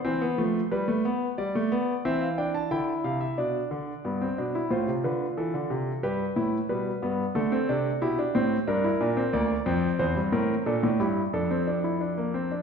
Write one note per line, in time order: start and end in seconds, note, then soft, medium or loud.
0.00 0.67 C5 medium
0.05 0.25 E3 medium
0.05 0.21 C4 medium
0.21 0.38 B3 medium
0.38 0.59 F3 medium
0.38 0.59 A3 medium
0.71 0.88 G3 medium
0.71 1.36 B4 medium
0.88 1.04 A3 medium
1.05 1.26 B3 medium
1.38 1.54 G3 medium
1.38 2.03 D5 medium
1.55 1.71 A3 medium
1.72 1.92 B3 medium
2.05 2.69 E3 medium
2.05 2.26 C4 medium
2.05 2.21 E5 medium
2.21 2.37 F5 medium
2.38 2.59 D4 medium
2.38 2.54 G5 medium
2.54 2.71 A5 medium
2.71 2.92 D3 medium
2.71 3.36 E4 medium
2.71 2.92 G5 medium
3.04 3.25 C3 medium
3.04 3.21 F5 medium
3.21 3.37 E5 medium
3.38 3.59 B2 medium
3.38 4.03 D4 medium
3.38 4.67 D5 medium
3.71 3.92 D3 medium
4.05 4.25 G2 medium
4.05 4.21 B3 medium
4.21 4.38 C4 medium
4.38 4.59 B2 medium
4.38 4.54 D4 medium
4.55 4.71 E4 medium
4.71 4.87 A2 medium
4.71 5.99 F4 medium
4.71 4.92 C5 medium
4.87 5.04 C3 medium
5.04 5.25 D3 medium
5.04 5.25 B4 medium
5.37 5.54 E3 medium
5.37 6.02 A4 medium
5.54 5.70 D3 medium
5.70 5.91 C3 medium
6.03 6.24 G2 medium
6.03 6.24 G4 medium
6.03 6.68 B4 medium
6.36 6.57 A2 medium
6.36 6.57 E4 medium
6.69 6.90 B2 medium
6.69 6.90 G3 medium
6.69 7.34 B4 medium
7.02 7.23 G2 medium
7.02 7.23 B3 medium
7.35 7.56 D3 medium
7.35 7.52 A3 medium
7.35 8.00 A4 medium
7.52 7.68 C4 medium
7.69 7.89 C3 medium
7.69 7.90 D4 medium
8.02 8.22 B2 medium
8.02 8.18 E4 medium
8.02 8.65 G4 medium
8.19 8.34 D4 medium
8.35 8.55 A2 medium
8.35 8.55 C4 medium
8.67 8.88 G2 medium
8.67 8.83 D4 medium
8.67 9.31 A#4 medium
8.84 9.00 E4 medium
9.01 9.21 A#2 medium
9.01 9.16 D4 medium
9.17 9.33 C4 medium
9.33 9.54 D2 medium
9.33 9.54 A#3 medium
9.33 9.98 D5 medium
9.66 9.87 F2 medium
9.66 10.63 C4 medium
9.99 10.16 E2 medium
9.99 10.20 C5 medium
10.16 10.32 G2 medium
10.33 10.53 A2 medium
10.33 10.53 A#4 medium
10.66 10.82 A#2 medium
10.66 10.87 D4 medium
10.66 10.87 A4 medium
10.83 10.99 A2 medium
10.99 11.21 G2 medium
10.99 11.21 E4 medium
10.99 11.21 G4 medium
11.33 12.62 F2 medium
11.33 11.50 D4 medium
11.33 12.62 A4 medium
11.51 11.67 C4 medium
11.67 11.84 D4 medium
11.84 12.00 E4 medium
12.01 12.17 D4 medium
12.18 12.34 A#3 medium
12.34 12.51 C4 medium
12.51 12.62 D4 medium